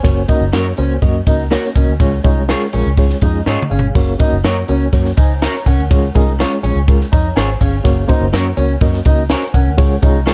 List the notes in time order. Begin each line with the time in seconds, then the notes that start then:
Already playing: C5 G#5
0.03 F#1 A#3 C#4 F#4 A#4 C#5, kick, hi-hat pedal, ride
0.28 A#3 C#4 D#4 F#4 A#4 D#5, kick, ride
0.41 F#1
0.53 F#2 A#3 C#4 F#4 A#4 C#5, snare, ride
0.77 C#2 A#3 C#4 F#4 A#4 C5, ride
1.02 F#2 A#3 C#4 F#4 A#4 D#5, kick, ride
1.26 C#2 A#3 C#4 D#4 F#4 A#4 D#5, kick, ride
1.51 A#3 C#4 F#4 A#4 C#5, snare, ride
1.65 snare
1.75 C2 A#3 C#4 F#4 A#4 D#5, kick, ride
1.88 D2
2.00 C#2 G#3 C#4 F4 G#4 C#5, kick, ride
2.24 C2 G#3 C#4 D#4 F4 G#4 C#5, kick, ride
2.48 G#3 C#4 F4 G#4 A#4 C#5, snare, ride
2.73 A#1 G#3 C#4 F4 G#4 A#4, ride
2.86 C#2
2.97 G#3 C#4 F4 G#4 C#5, kick, ride
3.10 snare
3.21 F2 G#3 C#4 D#4 F4 G#4 D#5, kick, ride
3.46 G#2 C#4 F4 G#4 C#5 D#5, snare
3.62 mid tom
3.70 G1 C#4 G#4 F5
3.79 floor tom
3.95 F#1 A#3 C#4 F#4 A#4 C#5, kick, splash
4.19 A#3 C#4 D#4 F#4 A#4 D#5, kick, ride
4.32 F#1
4.44 F#2 A#3 C#4 F#4 A#4 C#5, snare, ride
4.68 C#2 A#3 C#4 F#4 A#4 C#5, ride
4.92 F#2 A#3 C#4 F#4 A#4 C#5, kick, ride
5.05 snare
5.17 C#2 D#4 C5 G#5, kick, ride
5.42 C#4 F#4 A#4 C#5 A#5, snare, ride
5.55 snare
5.66 C2 C#4 A#4 F#5, kick, open hi-hat, ride
5.78 D2
5.91 C#2 G#3 C#4 F4 G#4 C#5, kick, hi-hat pedal, ride
6.15 C2 G#3 C#4 D#4 F4 G#4 A#4, kick, ride
6.39 G#3 C#4 F4 G#4 C#5, snare, ride
6.63 A#1 G#3 C#4 F4 G#4 C#5, ride
6.75 C#2
6.87 G#3 C#4 F4 G#4 A#4, kick, ride
7.01 snare
7.12 F2 D#4 C#5 A#5, kick, ride
7.36 G#1 C#4 F4 G#4 C5 C#5 G#5, snare, ride
7.60 G1 C#4 G#4 F5, kick, open hi-hat, ride
7.84 F#1 A#3 C#4 F#4 A#4 C#5, kick, hi-hat pedal, ride
8.08 A#3 C#4 D#4 F#4 A#4 C5, kick, ride
8.21 F#1
8.32 F#2 A#3 C#4 F#4 A#4 C#5, snare, ride
8.57 C#2 A#3 C#4 F#4 A#4 C#5, ride
8.81 F#2 A#3 C#4 F#4 A#4 D#5, kick, ride
8.93 snare
9.05 C#2 A#3 C#4 D#4 F#4 A#4 D#5, kick, ride
9.29 C#4 F#4 A#4 C5 C#5 G#5, snare, ride
9.43 snare
9.54 C2 C#4 A#4 F#5, kick, ride
9.66 D2
9.77 C#2 G#3 C#4 F4 G#4 C#5, kick, ride
10.02 C2 G#3 C#4 D#4 F4 G#4 C#5, kick, ride
10.26 G#3 C#4 F4 G#4 A#4 C#5, snare, ride